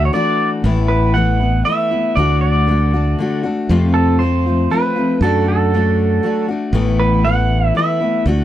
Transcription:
Already playing: A3 D4 F#4
0.05 C#5
0.13 E3 A3 D4 F#4 D5
0.64 A1 A2 E3 A3 B3 E4
0.88 B4
1.14 E3 A3 B3 E4 F#5
1.40 A3 B3 E4
1.65 E3 A3 B3 E4 E5
1.91 A3 B3 E4
2.16 D2 D3 A3 D4 F#4 D5
2.41 D5
2.67 D3 A3 D4 F#4
2.93 A3 D4 F#4
3.19 D3 A3 D4 F#4
3.43 A3 D4 F#4
3.69 F2 C3 F3 A3 C4 F4
3.94 A4
4.19 F3 A3 C5
4.23 C4 F4
4.46 F3 A3 C4 F4
4.70 F3 A3 C4 F4 B4
4.96 F3 A3 C4 F4
5.21 F#2 F#3 A3 D4 F#4 A4
5.48 A4
5.73 F#3 A3 D4 F#4
6.23 F#3 A3 D4 F#4
6.48 D4 F#4
6.52 A3
6.73 A1 A2 E3 A3 B3 E4
7.00 B4
7.25 E3 A3 B3 E4 F#5
7.67 E5
7.75 E3 A3 B3 E4 E5
8.00 A3 B3 E4
8.26 D2 D3 A3 D4 F#4

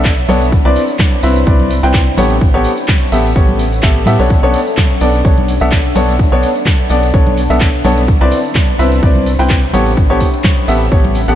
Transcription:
Already playing: B1 D4 C#5 A5 B5
0.05 kick, clap, tambourine
0.29 B1 B3 D4 A4 C#5, open hi-hat, tambourine, high conga
0.42 closed hi-hat, tambourine
0.52 kick, tambourine
0.62 C2 C4 E4 B4 C5 D5, closed hi-hat
0.75 open hi-hat, tambourine
0.88 E5, closed hi-hat, tambourine
0.99 kick, clap, tambourine, high conga
1.12 closed hi-hat
1.23 C2 C4 E4 B4 E5, open hi-hat, tambourine
1.36 closed hi-hat, tambourine
1.46 C2 C4 E4 B4 D5, kick, tambourine
1.60 closed hi-hat, high conga
1.71 open hi-hat, tambourine
1.83 C2 C4 E4 B4 G5, closed hi-hat, tambourine
1.94 kick, clap, tambourine
2.18 A1 B3 C#4 G4 A4 C#5, open hi-hat, tambourine, high conga
2.30 closed hi-hat, tambourine
2.41 A4, kick, tambourine
2.54 A1 B3 G4 A4 C#5, closed hi-hat
2.64 open hi-hat, tambourine
2.77 closed hi-hat, tambourine
2.84 G5, clap, tambourine
2.89 kick, high conga
3.01 closed hi-hat
3.12 A1 B3 G4 A4 E5, open hi-hat, tambourine
3.25 closed hi-hat, tambourine
3.36 B3 G4 A4 C#5, kick, tambourine
3.48 closed hi-hat, high conga
3.59 open hi-hat, tambourine
3.72 closed hi-hat, tambourine
3.82 A1 B3 G4 A4 E5, kick, clap, tambourine
4.06 A2 B3 G4 A4 E5, open hi-hat, tambourine, high conga
4.19 B1 B3 D4 A4 C#5, closed hi-hat, tambourine
4.29 D4, kick, tambourine
4.35 C#5
4.43 B1 B3 D4 A4 C#5, closed hi-hat
4.54 open hi-hat, tambourine
4.67 closed hi-hat, tambourine
4.71 A5
4.77 kick, clap, tambourine, high conga
4.90 closed hi-hat
5.01 B1 B3 D4 A4 D5, open hi-hat, tambourine
5.14 closed hi-hat, tambourine
5.25 B1 B3 D4 A4 C#5, kick, tambourine
5.38 closed hi-hat, high conga
5.48 open hi-hat, tambourine
5.60 B1 B3 D4 A4 E5, closed hi-hat, tambourine
5.72 kick, clap, tambourine
5.95 B1 B3 D4 A4 C#5, open hi-hat, tambourine, high conga
6.09 closed hi-hat, tambourine
6.19 kick, tambourine
6.32 B1 B3 D4 A4 C#5, closed hi-hat
6.43 open hi-hat, tambourine
6.56 closed hi-hat, tambourine
6.66 kick, clap, tambourine, high conga
6.79 closed hi-hat
6.89 B1 B3 D4 A4 D5, open hi-hat, tambourine
7.03 closed hi-hat, tambourine
7.13 B1 B3 D4 A4 C#5, kick, tambourine
7.27 closed hi-hat, high conga
7.37 open hi-hat, tambourine
7.50 B1 B3 D4 A4 E5, closed hi-hat, tambourine
7.60 kick, clap, tambourine
7.84 B1 B3 D4 A4 C#5, open hi-hat, tambourine, high conga
7.97 closed hi-hat, tambourine
8.08 kick, tambourine
8.21 C2 C4 E4 B4 C5 D5, closed hi-hat
8.31 open hi-hat, tambourine
8.44 closed hi-hat, tambourine
8.55 B5, kick, clap, tambourine, high conga
8.68 closed hi-hat
8.76 C2 C4 E4 B4 E5, open hi-hat, tambourine
8.92 closed hi-hat, tambourine
9.02 C4 E4 B4 D5, kick, tambourine
9.15 closed hi-hat, high conga
9.26 open hi-hat, tambourine
9.39 C2 C4 E4 B4 G5, closed hi-hat, tambourine
9.49 kick, clap, tambourine
9.73 A1 B3 C#4 G4 A4 C#5, open hi-hat, tambourine, high conga
9.82 A4
9.86 closed hi-hat, tambourine
9.97 kick, tambourine
10.10 A1 B3 G4 A4 C#5, closed hi-hat
10.20 kick, open hi-hat, tambourine
10.34 closed hi-hat, tambourine
10.39 G5
10.44 kick, clap, tambourine, high conga
10.57 closed hi-hat
10.68 A1 B3 G4 A4 E5, open hi-hat, tambourine
10.81 closed hi-hat, tambourine
10.92 B3 G4 A4 C#5, kick, tambourine
11.04 closed hi-hat, high conga
11.15 open hi-hat, tambourine
11.28 A1 B3 G4 A4 F#5, closed hi-hat, tambourine

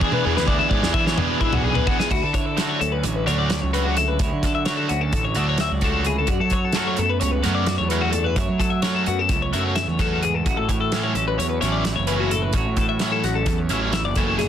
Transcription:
0.00 E2 E3 B3 D4 G#4, kick
0.04 D4
0.12 B4, high tom
0.24 E2 B3 D4 G#4
0.37 D2 B4, snare
0.48 E3 B3 D4 G#4 D5, kick
0.59 E5
0.70 G#2 B3 D4 G#4 D5, kick
0.83 E2, snare
0.93 E3 B3 D4 G#4 E5, kick
1.07 C#5, snare
1.17 B2 B3 D4 G#4 D5, mid tom
1.29 B4
1.39 G#2 E3 B3 D4 E4, kick
1.44 G#4
1.53 B1 F#4, floor tom
1.63 F#2 G#4
1.75 B4, floor tom
1.86 E2 E3 B3 D4 F#4 G#4, kick
2.00 G#4, snare
2.11 D2 E4 F#4, muted overdriven electric guitar stroke, kick, crash
2.23 D3 A4
2.33 D3 C#5, muted overdriven electric guitar stroke, kick, closed hi-hat
2.46 A4
2.57 D3 F#3 A3 D4 F#4, snare, closed hi-hat
2.69 C#5
2.79 D2 C#4 A4, muted overdriven electric guitar stroke, closed hi-hat
2.92 B4
3.03 A1 A2 C#5, muted overdriven electric guitar stroke, closed hi-hat
3.15 B4
3.26 D2 D3 F#3 A3 D4 F#4 C#5, closed hi-hat
3.39 D5
3.50 muted overdriven electric guitar stroke, snare, closed hi-hat
3.62 C#2 C#5
3.73 D3 F#3 A3 D4 F#4 B4, closed hi-hat
3.85 F#4
3.97 D2 E4 A4, muted overdriven electric guitar stroke, snare, closed hi-hat
4.08 B4
4.19 D2 E4 C#5, muted overdriven electric guitar stroke, kick, closed hi-hat
4.33 D3
4.43 D3 A4, muted overdriven electric guitar stroke, kick, snare, closed hi-hat
4.55 E5
4.65 D3 F#3 A3 D4 F#4 C#5, snare, closed hi-hat
4.77 A4
4.89 D2 C#4 F#4, muted overdriven electric guitar stroke, closed hi-hat
5.01 A4
5.12 A1 A2, muted overdriven electric guitar stroke, kick, closed hi-hat
5.25 C#5
5.35 D2 D3 F#3 A3 D4 F#4 E5, closed hi-hat
5.49 C#5
5.58 E5, muted overdriven electric guitar stroke, snare, closed hi-hat
5.71 C#2 D5
5.81 D3 F#3 A3 D4 F#4 A4, kick, closed hi-hat
6.05 D2 G#4, muted overdriven electric guitar stroke, closed hi-hat
6.09 E4
6.18 A4
6.27 F#2 D4 F#4, muted overdriven electric guitar stroke, kick, closed hi-hat
6.40 F#3 E4 A4
6.50 F#3 C#5, muted overdriven electric guitar stroke, kick, closed hi-hat
6.65 A4
6.72 F#3 A3, snare, closed hi-hat
6.77 C#4 F#4
6.87 C#5
6.97 F#2 B3 A4, muted overdriven electric guitar stroke, closed hi-hat
7.10 B4
7.20 C#2 C#3 C#5, muted overdriven electric guitar stroke, closed hi-hat
7.31 B4
7.43 F#2 F#3 A3 C#4 F#4 C#5, snare, closed hi-hat
7.55 D5
7.66 F#3, muted overdriven electric guitar stroke, snare, closed hi-hat
7.78 E2 C#5
7.89 A3 C#4 F#4 B4, closed hi-hat
7.93 F#3
8.01 F#4
8.12 F#2 D4 A4, muted overdriven electric guitar stroke, closed hi-hat
8.24 E4 B4
8.36 F#2 E4 C#5, muted overdriven electric guitar stroke, kick, closed hi-hat
8.49 F#3
8.59 F#3 A4, muted overdriven electric guitar stroke, kick, closed hi-hat
8.70 E5
8.82 F#3 A3 C#4 F#4 C#5, snare, closed hi-hat
8.95 A4
9.06 F#2 B3 F#4, muted overdriven electric guitar stroke, closed hi-hat
9.19 A4
9.29 C#2 C#3, muted overdriven electric guitar stroke, kick, snare, closed hi-hat
9.42 C#5
9.53 F#2 F#3 A3 C#4 F#4 E5, closed hi-hat
9.66 C#5
9.76 E2 E5, muted overdriven electric guitar stroke, snare, closed hi-hat
9.88 E2 C#5
9.99 F#2 F#3 A3 C#4 F#4 A4, kick, snare, closed hi-hat
10.23 G#2 G#4, muted overdriven electric guitar stroke, closed hi-hat
10.34 A4
10.45 A1 A2 F#4, muted overdriven electric guitar stroke, kick, closed hi-hat
10.57 A2 A4
10.68 E3 C#5, muted overdriven electric guitar stroke, kick, closed hi-hat
10.81 A4
10.92 E3 F#3 A3 C#4 E4, snare, closed hi-hat
11.03 C#5
11.15 A1 C#4 A4, muted overdriven electric guitar stroke, closed hi-hat
11.28 B4
11.38 E2 C#5, muted overdriven electric guitar stroke, closed hi-hat
11.49 B4
11.61 A1 E3 F#3 A3 C#4 E4 C#5, closed hi-hat
11.72 D5
11.85 E3, muted overdriven electric guitar stroke, snare, closed hi-hat
11.96 F#1 C#5
12.07 E3 A3 C#4 E4 B4, closed hi-hat
12.11 F#3
12.20 F#4
12.31 A2 E4 A4, muted overdriven electric guitar stroke, closed hi-hat
12.42 B4
12.53 A1 A2 F#4 C#5, muted overdriven electric guitar stroke, kick, closed hi-hat
12.66 A2
12.76 E3 A4, muted overdriven electric guitar stroke, kick, closed hi-hat
12.89 E5
12.99 E3 F#3 A3 C#4 E4 C#5, snare, closed hi-hat
13.12 A4
13.24 A1 C#4 F#4, muted overdriven electric guitar stroke, snare, closed hi-hat
13.35 A4
13.46 E2, muted overdriven electric guitar stroke, kick, snare, closed hi-hat
13.58 C#5
13.69 A1 E3 F#3 A3 C#4 E4 E5, closed hi-hat
13.81 C#5
13.93 E3 E5, muted overdriven electric guitar stroke, snare, closed hi-hat
14.05 F#1 D5
14.15 E3 F#3 A3 C#4 E4 A4, kick, closed hi-hat
14.38 A2 D4 G#4, muted overdriven electric guitar stroke, snare, closed hi-hat

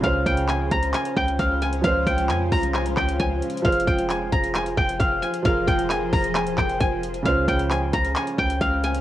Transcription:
Already playing: G#5 A#5
0.01 C#2 C#3 G#3 C#4 F4 C5 F5, kick, closed hi-hat
0.06 C5
0.26 C#2 G5, kick, closed hi-hat
0.37 closed hi-hat
0.49 G#5, clap, closed hi-hat
0.71 C#2 A#5, kick, closed hi-hat
0.83 closed hi-hat
0.94 G#5, clap, closed hi-hat
1.05 closed hi-hat
1.16 C#2 G5, kick
1.28 closed hi-hat
1.39 C#2 F5, kick, closed hi-hat
1.62 G#5, closed hi-hat
1.73 closed hi-hat
1.81 C#2 F3 C#4 F4 F5, kick, closed hi-hat
1.87 C5
2.07 C#2 G5, kick, closed hi-hat
2.18 closed hi-hat
2.29 F2 G#5, clap, closed hi-hat
2.52 C2 A#5, kick, open hi-hat
2.63 closed hi-hat
2.74 G#5, clap, closed hi-hat
2.86 closed hi-hat
2.97 C#2 G5, kick, clap
3.09 closed hi-hat
3.19 C#2 G#5, kick, closed hi-hat
3.42 closed hi-hat
3.50 closed hi-hat
3.57 closed hi-hat
3.62 F1 F3 F4 G#4 C5 F5, kick, closed hi-hat
3.68 C5
3.72 closed hi-hat
3.80 closed hi-hat
3.87 F1 G5, kick, closed hi-hat
3.98 closed hi-hat
4.10 G#5, clap, closed hi-hat
4.32 F1 A#5, kick, closed hi-hat
4.44 closed hi-hat
4.55 G#5, clap, closed hi-hat
4.66 closed hi-hat
4.77 F1 G5, kick
4.89 closed hi-hat
5.00 F1 F5, kick, closed hi-hat
5.22 G#5, closed hi-hat
5.34 closed hi-hat
5.43 F1 F3 F4 G#4 F5, kick, closed hi-hat
5.48 A#4
5.67 F1 G5, kick, closed hi-hat
5.79 closed hi-hat
5.90 G#5, clap, closed hi-hat
6.13 F1 A#5, kick, open hi-hat
6.24 closed hi-hat
6.35 G#5, clap, closed hi-hat
6.47 E1, closed hi-hat
6.58 F1 G5, kick, clap
6.69 closed hi-hat
6.80 F1 G#5, kick, closed hi-hat
7.03 closed hi-hat
7.14 closed hi-hat
7.23 C#2 C#3 G#3 C#4 F4 C5 F5, kick, closed hi-hat
7.28 C5
7.48 C#2 G5, kick, closed hi-hat
7.59 closed hi-hat
7.71 G#5, clap, closed hi-hat
7.93 C#2 A#5, kick, closed hi-hat
8.05 closed hi-hat
8.16 G#5, clap, closed hi-hat
8.27 closed hi-hat
8.38 C#2 G5, kick
8.50 closed hi-hat
8.61 C#2 F5, kick, closed hi-hat
8.84 G#5, closed hi-hat
8.95 closed hi-hat

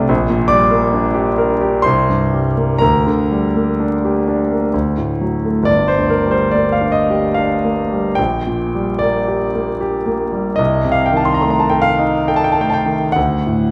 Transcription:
Already playing: C3 A3 D4 A4 D5 A5 A6
0.09 A#1
0.29 A#2
0.48 G3 D5 D6
0.71 A#3
0.93 D4
1.14 G4
1.38 A#4
1.61 G4
1.82 C2 C5 C6
2.09 G2
2.33 G3
2.57 A#3
2.78 D2 A#4 A#5
3.07 D3
3.31 G3
3.56 A#3
3.80 D4
4.05 G4
4.28 D4
4.51 A#3
4.74 D2
4.98 A2
5.21 F#3
5.45 A3
5.63 G1 D5
5.88 C5
5.98 D2
6.10 A#4
6.26 G3
6.31 C5
6.51 A#3 D5
6.72 F5
6.81 D4
6.92 D#5
7.10 G4
7.34 D4 F5
7.64 A#3
7.92 G3
8.15 A#1 G5
8.47 A#2
8.75 G3
8.99 A#3 D5
9.28 G4
9.55 A#3
9.81 G4
10.06 A#3
10.32 G3
10.56 C2 D#5
10.85 C3
10.92 F5
11.06 G5
11.12 D#3
11.17 A5
11.25 C6
11.34 A#5
11.41 A3 C6
11.50 A#5
11.60 A5
11.70 A4 G5
11.82 F5
11.99 D#4
12.28 A4 G5
12.36 A5
12.44 G5
12.52 A5
12.57 A3
12.61 G5
12.70 G5 A5
12.86 D#3
13.12 D2 F#5
13.47 A2

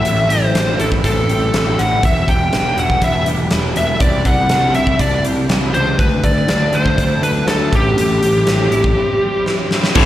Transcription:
Already playing: E4 E5
0.05 A1 A2, closed hi-hat
0.29 A1 G3 C5, closed hi-hat
0.54 A1 C4, snare, closed hi-hat
0.79 A1 E4 A4, closed hi-hat
0.92 kick
1.04 A1 C4 A4, kick, closed hi-hat
1.29 A1 G3, closed hi-hat
1.54 A1 E3, snare, closed hi-hat
1.79 A1 C4 F#5, closed hi-hat
2.03 E1 E2 E5, kick, closed hi-hat
2.28 E1 G3 G5, kick, closed hi-hat
2.53 E1 B3, snare, closed hi-hat
2.78 E1 E4 F#5, closed hi-hat
2.90 kick
3.02 E1 B3 E5, kick, closed hi-hat
3.26 E1 G3, closed hi-hat
3.51 E1 E3, snare, closed hi-hat
3.76 E1 B3 E5, closed hi-hat
4.00 C2 C3 D5, kick, closed hi-hat
4.25 C2 G3 F#5, kick, closed hi-hat
4.49 C2 D4, snare, closed hi-hat
4.74 C2 E4 E5, closed hi-hat
4.87 kick
4.99 C2 D4 D5, kick, closed hi-hat
5.24 C2 G3, closed hi-hat
5.49 C2 E3, snare, closed hi-hat
5.73 C#2 D4 C5, closed hi-hat
5.99 D2 D3 B4, kick, closed hi-hat
6.23 D2 A3 D5, kick, closed hi-hat
6.48 D2 D4, snare, closed hi-hat
6.73 D2 E4 C5, closed hi-hat
6.86 kick
6.98 D2 D4, kick, closed hi-hat
7.22 D2 A3 B4, closed hi-hat
7.47 D2 F#3 A4, snare, closed hi-hat
7.72 A1 A2 G4, kick, closed hi-hat
7.97 A1 A2, closed hi-hat
8.22 A1 G3, closed hi-hat
8.47 A1 C4, snare, closed hi-hat
8.72 A1 E4, closed hi-hat
8.84 kick
8.97 C4
9.21 G3
9.46 E3, snare
9.71 C4, snare
9.84 snare
9.95 A1 A2 E3 A3, kick, crash

